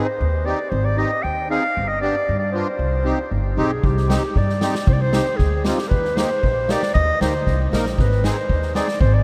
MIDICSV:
0, 0, Header, 1, 5, 480
1, 0, Start_track
1, 0, Key_signature, -3, "minor"
1, 0, Tempo, 517688
1, 672, Time_signature, 2, 2, 24, 8
1, 8561, End_track
2, 0, Start_track
2, 0, Title_t, "Clarinet"
2, 0, Program_c, 0, 71
2, 0, Note_on_c, 0, 72, 78
2, 425, Note_on_c, 0, 74, 84
2, 439, Note_off_c, 0, 72, 0
2, 651, Note_on_c, 0, 72, 82
2, 665, Note_off_c, 0, 74, 0
2, 791, Note_on_c, 0, 74, 90
2, 804, Note_off_c, 0, 72, 0
2, 910, Note_on_c, 0, 75, 93
2, 924, Note_off_c, 0, 74, 0
2, 1141, Note_on_c, 0, 79, 81
2, 1155, Note_off_c, 0, 75, 0
2, 1390, Note_off_c, 0, 79, 0
2, 1399, Note_on_c, 0, 77, 92
2, 1746, Note_on_c, 0, 75, 85
2, 1760, Note_off_c, 0, 77, 0
2, 1864, Note_off_c, 0, 75, 0
2, 1870, Note_on_c, 0, 74, 90
2, 2210, Note_off_c, 0, 74, 0
2, 2221, Note_on_c, 0, 74, 74
2, 2331, Note_off_c, 0, 74, 0
2, 2336, Note_on_c, 0, 72, 76
2, 3275, Note_off_c, 0, 72, 0
2, 3351, Note_on_c, 0, 68, 72
2, 3581, Note_on_c, 0, 67, 83
2, 3595, Note_off_c, 0, 68, 0
2, 4060, Note_on_c, 0, 74, 73
2, 4074, Note_off_c, 0, 67, 0
2, 4531, Note_on_c, 0, 72, 98
2, 4544, Note_off_c, 0, 74, 0
2, 4574, Note_on_c, 0, 74, 74
2, 4588, Note_off_c, 0, 72, 0
2, 4649, Note_on_c, 0, 72, 105
2, 4663, Note_off_c, 0, 74, 0
2, 4979, Note_on_c, 0, 68, 84
2, 4993, Note_off_c, 0, 72, 0
2, 5236, Note_on_c, 0, 67, 80
2, 5250, Note_off_c, 0, 68, 0
2, 5458, Note_on_c, 0, 71, 98
2, 5472, Note_off_c, 0, 67, 0
2, 5717, Note_on_c, 0, 72, 92
2, 5731, Note_off_c, 0, 71, 0
2, 6222, Note_on_c, 0, 74, 94
2, 6236, Note_off_c, 0, 72, 0
2, 6430, Note_off_c, 0, 74, 0
2, 6436, Note_on_c, 0, 75, 105
2, 6660, Note_off_c, 0, 75, 0
2, 6692, Note_on_c, 0, 72, 88
2, 7130, Note_off_c, 0, 72, 0
2, 7418, Note_on_c, 0, 71, 80
2, 7648, Note_on_c, 0, 72, 94
2, 7662, Note_off_c, 0, 71, 0
2, 8111, Note_off_c, 0, 72, 0
2, 8117, Note_on_c, 0, 74, 77
2, 8335, Note_off_c, 0, 74, 0
2, 8355, Note_on_c, 0, 72, 91
2, 8480, Note_on_c, 0, 74, 78
2, 8494, Note_off_c, 0, 72, 0
2, 8561, Note_off_c, 0, 74, 0
2, 8561, End_track
3, 0, Start_track
3, 0, Title_t, "Accordion"
3, 0, Program_c, 1, 21
3, 416, Note_on_c, 1, 60, 63
3, 423, Note_on_c, 1, 63, 58
3, 425, Note_on_c, 1, 67, 69
3, 544, Note_off_c, 1, 60, 0
3, 547, Note_off_c, 1, 63, 0
3, 549, Note_off_c, 1, 67, 0
3, 895, Note_on_c, 1, 60, 59
3, 896, Note_on_c, 1, 63, 54
3, 907, Note_on_c, 1, 67, 66
3, 1025, Note_off_c, 1, 60, 0
3, 1026, Note_off_c, 1, 63, 0
3, 1031, Note_off_c, 1, 67, 0
3, 1391, Note_on_c, 1, 63, 58
3, 1392, Note_on_c, 1, 60, 59
3, 1397, Note_on_c, 1, 68, 73
3, 1514, Note_off_c, 1, 63, 0
3, 1515, Note_off_c, 1, 60, 0
3, 1518, Note_off_c, 1, 68, 0
3, 1867, Note_on_c, 1, 59, 59
3, 1874, Note_on_c, 1, 62, 58
3, 1881, Note_on_c, 1, 67, 73
3, 1993, Note_off_c, 1, 59, 0
3, 1997, Note_off_c, 1, 62, 0
3, 2001, Note_off_c, 1, 67, 0
3, 2353, Note_on_c, 1, 59, 57
3, 2355, Note_on_c, 1, 62, 56
3, 2360, Note_on_c, 1, 65, 68
3, 2478, Note_off_c, 1, 59, 0
3, 2479, Note_off_c, 1, 62, 0
3, 2481, Note_off_c, 1, 65, 0
3, 2821, Note_on_c, 1, 60, 58
3, 2828, Note_on_c, 1, 67, 64
3, 2829, Note_on_c, 1, 63, 58
3, 2952, Note_off_c, 1, 60, 0
3, 2956, Note_off_c, 1, 63, 0
3, 2956, Note_off_c, 1, 67, 0
3, 3307, Note_on_c, 1, 60, 80
3, 3312, Note_on_c, 1, 63, 59
3, 3323, Note_on_c, 1, 67, 78
3, 3436, Note_off_c, 1, 60, 0
3, 3438, Note_off_c, 1, 63, 0
3, 3444, Note_off_c, 1, 67, 0
3, 3788, Note_on_c, 1, 60, 59
3, 3797, Note_on_c, 1, 63, 60
3, 3797, Note_on_c, 1, 67, 75
3, 3917, Note_off_c, 1, 60, 0
3, 3921, Note_off_c, 1, 63, 0
3, 3921, Note_off_c, 1, 67, 0
3, 4272, Note_on_c, 1, 60, 61
3, 4277, Note_on_c, 1, 63, 55
3, 4283, Note_on_c, 1, 67, 69
3, 4399, Note_off_c, 1, 60, 0
3, 4401, Note_off_c, 1, 63, 0
3, 4405, Note_off_c, 1, 67, 0
3, 4750, Note_on_c, 1, 60, 67
3, 4752, Note_on_c, 1, 63, 62
3, 4760, Note_on_c, 1, 67, 69
3, 4878, Note_off_c, 1, 60, 0
3, 4879, Note_off_c, 1, 63, 0
3, 4883, Note_off_c, 1, 67, 0
3, 5241, Note_on_c, 1, 60, 63
3, 5244, Note_on_c, 1, 63, 63
3, 5250, Note_on_c, 1, 65, 68
3, 5363, Note_off_c, 1, 60, 0
3, 5364, Note_off_c, 1, 63, 0
3, 5367, Note_off_c, 1, 65, 0
3, 5708, Note_on_c, 1, 58, 68
3, 5717, Note_on_c, 1, 63, 63
3, 5720, Note_on_c, 1, 67, 73
3, 5836, Note_off_c, 1, 58, 0
3, 5840, Note_off_c, 1, 63, 0
3, 5841, Note_off_c, 1, 67, 0
3, 6199, Note_on_c, 1, 58, 75
3, 6200, Note_on_c, 1, 63, 63
3, 6208, Note_on_c, 1, 67, 70
3, 6320, Note_off_c, 1, 58, 0
3, 6320, Note_off_c, 1, 63, 0
3, 6324, Note_off_c, 1, 67, 0
3, 6676, Note_on_c, 1, 58, 60
3, 6682, Note_on_c, 1, 63, 59
3, 6682, Note_on_c, 1, 67, 74
3, 6797, Note_off_c, 1, 58, 0
3, 6800, Note_off_c, 1, 63, 0
3, 6800, Note_off_c, 1, 67, 0
3, 7156, Note_on_c, 1, 58, 65
3, 7164, Note_on_c, 1, 63, 52
3, 7167, Note_on_c, 1, 70, 69
3, 7275, Note_off_c, 1, 58, 0
3, 7280, Note_off_c, 1, 63, 0
3, 7281, Note_off_c, 1, 70, 0
3, 7638, Note_on_c, 1, 60, 65
3, 7641, Note_on_c, 1, 63, 54
3, 7646, Note_on_c, 1, 68, 70
3, 7755, Note_off_c, 1, 60, 0
3, 7756, Note_off_c, 1, 63, 0
3, 7759, Note_off_c, 1, 68, 0
3, 8107, Note_on_c, 1, 60, 72
3, 8112, Note_on_c, 1, 63, 60
3, 8115, Note_on_c, 1, 68, 70
3, 8227, Note_off_c, 1, 60, 0
3, 8230, Note_off_c, 1, 63, 0
3, 8231, Note_off_c, 1, 68, 0
3, 8561, End_track
4, 0, Start_track
4, 0, Title_t, "Upright bass"
4, 0, Program_c, 2, 32
4, 190, Note_on_c, 2, 39, 79
4, 479, Note_off_c, 2, 39, 0
4, 665, Note_on_c, 2, 32, 81
4, 956, Note_off_c, 2, 32, 0
4, 1152, Note_on_c, 2, 39, 70
4, 1442, Note_off_c, 2, 39, 0
4, 1642, Note_on_c, 2, 31, 81
4, 1930, Note_off_c, 2, 31, 0
4, 2120, Note_on_c, 2, 43, 76
4, 2409, Note_off_c, 2, 43, 0
4, 2586, Note_on_c, 2, 36, 74
4, 2880, Note_off_c, 2, 36, 0
4, 3073, Note_on_c, 2, 31, 68
4, 3294, Note_off_c, 2, 31, 0
4, 3315, Note_on_c, 2, 35, 73
4, 3536, Note_off_c, 2, 35, 0
4, 3556, Note_on_c, 2, 36, 85
4, 3847, Note_off_c, 2, 36, 0
4, 4041, Note_on_c, 2, 43, 72
4, 4331, Note_off_c, 2, 43, 0
4, 4514, Note_on_c, 2, 36, 92
4, 4805, Note_off_c, 2, 36, 0
4, 5004, Note_on_c, 2, 38, 78
4, 5292, Note_off_c, 2, 38, 0
4, 5483, Note_on_c, 2, 39, 72
4, 5770, Note_off_c, 2, 39, 0
4, 5964, Note_on_c, 2, 34, 79
4, 6251, Note_off_c, 2, 34, 0
4, 6447, Note_on_c, 2, 39, 83
4, 6588, Note_off_c, 2, 39, 0
4, 6684, Note_on_c, 2, 38, 82
4, 6897, Note_off_c, 2, 38, 0
4, 6927, Note_on_c, 2, 36, 78
4, 7137, Note_off_c, 2, 36, 0
4, 7155, Note_on_c, 2, 34, 80
4, 7370, Note_off_c, 2, 34, 0
4, 7401, Note_on_c, 2, 32, 76
4, 7685, Note_off_c, 2, 32, 0
4, 7873, Note_on_c, 2, 39, 69
4, 8158, Note_off_c, 2, 39, 0
4, 8347, Note_on_c, 2, 32, 81
4, 8561, Note_off_c, 2, 32, 0
4, 8561, End_track
5, 0, Start_track
5, 0, Title_t, "Drums"
5, 3556, Note_on_c, 9, 36, 76
5, 3649, Note_off_c, 9, 36, 0
5, 3681, Note_on_c, 9, 38, 22
5, 3774, Note_off_c, 9, 38, 0
5, 3801, Note_on_c, 9, 38, 85
5, 3894, Note_off_c, 9, 38, 0
5, 4041, Note_on_c, 9, 36, 64
5, 4134, Note_off_c, 9, 36, 0
5, 4164, Note_on_c, 9, 38, 21
5, 4257, Note_off_c, 9, 38, 0
5, 4275, Note_on_c, 9, 38, 77
5, 4368, Note_off_c, 9, 38, 0
5, 4403, Note_on_c, 9, 38, 60
5, 4496, Note_off_c, 9, 38, 0
5, 4519, Note_on_c, 9, 36, 88
5, 4612, Note_off_c, 9, 36, 0
5, 4755, Note_on_c, 9, 38, 79
5, 4848, Note_off_c, 9, 38, 0
5, 4994, Note_on_c, 9, 38, 26
5, 5001, Note_on_c, 9, 36, 66
5, 5087, Note_off_c, 9, 38, 0
5, 5094, Note_off_c, 9, 36, 0
5, 5235, Note_on_c, 9, 38, 74
5, 5328, Note_off_c, 9, 38, 0
5, 5360, Note_on_c, 9, 38, 54
5, 5453, Note_off_c, 9, 38, 0
5, 5483, Note_on_c, 9, 36, 78
5, 5576, Note_off_c, 9, 36, 0
5, 5606, Note_on_c, 9, 38, 22
5, 5699, Note_off_c, 9, 38, 0
5, 5721, Note_on_c, 9, 38, 78
5, 5813, Note_off_c, 9, 38, 0
5, 5966, Note_on_c, 9, 36, 68
5, 6058, Note_off_c, 9, 36, 0
5, 6201, Note_on_c, 9, 38, 70
5, 6294, Note_off_c, 9, 38, 0
5, 6328, Note_on_c, 9, 38, 57
5, 6421, Note_off_c, 9, 38, 0
5, 6447, Note_on_c, 9, 36, 82
5, 6539, Note_off_c, 9, 36, 0
5, 6685, Note_on_c, 9, 38, 72
5, 6778, Note_off_c, 9, 38, 0
5, 6921, Note_on_c, 9, 38, 22
5, 6925, Note_on_c, 9, 36, 66
5, 7014, Note_off_c, 9, 38, 0
5, 7018, Note_off_c, 9, 36, 0
5, 7168, Note_on_c, 9, 38, 79
5, 7260, Note_off_c, 9, 38, 0
5, 7285, Note_on_c, 9, 38, 51
5, 7378, Note_off_c, 9, 38, 0
5, 7403, Note_on_c, 9, 36, 90
5, 7407, Note_on_c, 9, 38, 28
5, 7496, Note_off_c, 9, 36, 0
5, 7500, Note_off_c, 9, 38, 0
5, 7524, Note_on_c, 9, 38, 21
5, 7616, Note_off_c, 9, 38, 0
5, 7640, Note_on_c, 9, 38, 75
5, 7733, Note_off_c, 9, 38, 0
5, 7876, Note_on_c, 9, 36, 60
5, 7969, Note_off_c, 9, 36, 0
5, 7993, Note_on_c, 9, 38, 22
5, 8086, Note_off_c, 9, 38, 0
5, 8114, Note_on_c, 9, 38, 68
5, 8207, Note_off_c, 9, 38, 0
5, 8232, Note_on_c, 9, 38, 51
5, 8325, Note_off_c, 9, 38, 0
5, 8350, Note_on_c, 9, 36, 98
5, 8443, Note_off_c, 9, 36, 0
5, 8561, End_track
0, 0, End_of_file